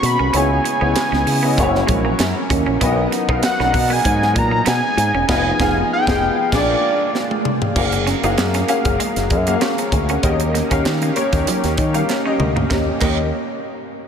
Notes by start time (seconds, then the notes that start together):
Already playing: D#3 A#3 C#4 D#4 F#4 G#4 A#4 C#5
0.03 B2 B5, muted clean electric guitar stroke, closed hi-hat
0.19 C2 C#4
0.33 C#2 C#3 G#3 B3 C#4 E4 G#4 C#5 G#5, closed hi-hat
0.64 muted clean electric guitar stroke, closed hi-hat
0.81 C#2 B3 C#4 E4 G#4 C#5
0.96 snare, clap, closed hi-hat
1.12 C#2 C#4, snare
1.26 C#3, muted clean electric guitar stroke, open hi-hat
1.43 B3 C#4 E4 G#4 D#5
1.57 F#1 F#3 A#3 C#4 E4 F#4 A#4 C#5, muted clean electric guitar stroke, kick, closed hi-hat
1.75 snare
1.87 A#1 G#3, kick, closed hi-hat
2.05 A#3
2.19 F#2, muted clean electric guitar stroke, snare, clap, closed hi-hat
2.50 D#2 C#4, kick, closed hi-hat
2.66 A#1 C#4
2.81 B1 F#3 B3 D#4 F#4 A#4 D#5, kick, closed hi-hat
3.12 muted clean electric guitar stroke, snare, closed hi-hat
3.29 B1 B3 D#4 F#4 A#4 F5, kick
3.43 F#5, snare, clap, closed hi-hat
3.59 B1 C#4 D#4 F#4 A#4 B4 D5, snare
3.67 D#5
3.74 B2, muted clean electric guitar stroke, kick, open hi-hat
3.90 B3 G#5
4.05 G#2, muted clean electric guitar stroke, kick, closed hi-hat
4.22 snare
4.35 A#2 G#3 A#5, kick, closed hi-hat
4.51 A#3
4.66 B2 B3 G#5, snare, clap, closed hi-hat
4.97 G#2, muted clean electric guitar stroke, closed hi-hat
5.14 E1 C#4
5.28 F1 F3 B3 D#4 F4 G#4 D#5 G#5, kick, snare, crash
5.59 F1 B3 D#4 F4 G#4 F5, kick, snare
5.93 G5
6.07 F1 B3 D#4 F4 G#4 F5, kick, snare
6.52 A#1 G#3 A#3 D4 F4 G#4 D5, kick, snare, crash
7.15 snare
7.31 high tom
7.45 mid tom
7.62 floor tom
7.75 F#1 F#3 A#3 F#4 G#4 A#4 F5, kick, crash
7.92 muted clean electric guitar stroke, closed hi-hat
8.07 C#4, snare, closed hi-hat
8.22 F#1 A#3 D#4 F#4 G#4 F5, closed hi-hat
8.38 F#2, muted clean electric guitar stroke, snare, clap
8.54 C#4, snare, closed hi-hat
8.68 A#3 C#4 F#4 G#4 F5, closed hi-hat
8.85 F#1, kick, closed hi-hat
9.00 G#3, closed hi-hat
9.16 F#1, snare, closed hi-hat
9.30 F#2, muted clean electric guitar stroke, kick, closed hi-hat
9.46 A#3 F#4 G#4 F5, closed hi-hat
9.61 C#4 F5 C#6, snare, clap
9.78 C#5 A#5, muted clean electric guitar stroke, closed hi-hat
9.92 D2 G#5, kick, closed hi-hat
10.08 C#4 A#4 F#5, closed hi-hat
10.23 D#2 A#3 C#4 D#4 G4 A#4 D#5, kick, closed hi-hat
10.40 muted clean electric guitar stroke, closed hi-hat
10.54 A#3, snare, closed hi-hat
10.70 D#2 C#4 G4 A#4 F5, kick, closed hi-hat
10.85 D#3, muted clean electric guitar stroke, snare, clap
11.02 A#3, closed hi-hat
11.14 A#3 C#4 G4 A#4 C#5, closed hi-hat
11.33 D#2, kick, closed hi-hat
11.47 F#3, closed hi-hat
11.64 D#2, snare, closed hi-hat
11.78 D#3, muted clean electric guitar stroke, kick, closed hi-hat
11.93 G3 C#4 G4 A#4 F5, closed hi-hat
12.09 snare, clap
12.25 C#4 G4 A#4 D#5
12.40 D2, muted clean electric guitar stroke, mid tom
12.56 A#3, floor tom
12.70 D#2 D#3 A#3 C#4 G4 A#4 D#5, kick, snare, clap
13.01 D#2 A#3 C#4 G4 A#4 D#5, kick, clap, crash